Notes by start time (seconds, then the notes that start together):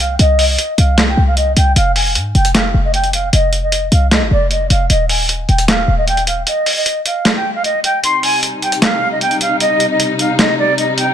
Already playing: C2
0.00 F5
0.19 C2 D#5, closed hi-hat
0.39 open hi-hat
0.49 D#5
0.58 closed hi-hat
0.78 C2 F5, closed hi-hat
0.98 snare, clap, closed hi-hat
1.07 G5
1.17 C2
1.27 F5
1.37 D#5, closed hi-hat
1.57 C2 G5, closed hi-hat
1.76 F1 F5, closed hi-hat
1.96 G#5, open hi-hat
2.15 G#2, closed hi-hat
2.35 F1 G5, closed hi-hat
2.45 closed hi-hat
2.55 F5, snare, clap, closed hi-hat
2.74 F1
2.84 D#5
2.94 G5, closed hi-hat
3.04 closed hi-hat
3.13 F5, closed hi-hat
3.33 F1 D#5, closed hi-hat
3.53 closed hi-hat
3.62 D#5
3.72 closed hi-hat
3.92 C2 F5, closed hi-hat
4.11 D#5, snare, clap, closed hi-hat
4.21 G1
4.31 F1 D5
4.51 D#5, closed hi-hat
4.70 F1 F5, closed hi-hat
4.90 D#1 D#5, closed hi-hat
5.09 G#5, open hi-hat
5.29 closed hi-hat
5.49 D#1 G5, closed hi-hat
5.58 closed hi-hat
5.68 F5, snare, clap, closed hi-hat
5.88 D#1
5.98 D#5
6.07 G5, closed hi-hat
6.17 closed hi-hat
6.27 F5, closed hi-hat
6.47 D#5, closed hi-hat
6.66 open hi-hat
6.76 D#5
6.86 closed hi-hat
7.06 F5, closed hi-hat
7.25 snare, clap, closed hi-hat
7.35 G5
7.55 F5
7.64 D#5, closed hi-hat
7.84 G5, closed hi-hat
8.04 C3 G3 D#4 C6, closed hi-hat
8.23 G#5, open hi-hat
8.43 closed hi-hat
8.62 G5, closed hi-hat
8.72 closed hi-hat
8.82 F5, snare, clap, closed hi-hat
9.11 D#5
9.21 G5, closed hi-hat
9.31 closed hi-hat
9.41 F5, closed hi-hat
9.60 D#5, closed hi-hat
9.80 closed hi-hat
9.90 D#5
10.00 closed hi-hat
10.19 F5, closed hi-hat
10.39 D#5, snare, clap, closed hi-hat
10.58 D5
10.78 D#5, closed hi-hat
10.98 G5, closed hi-hat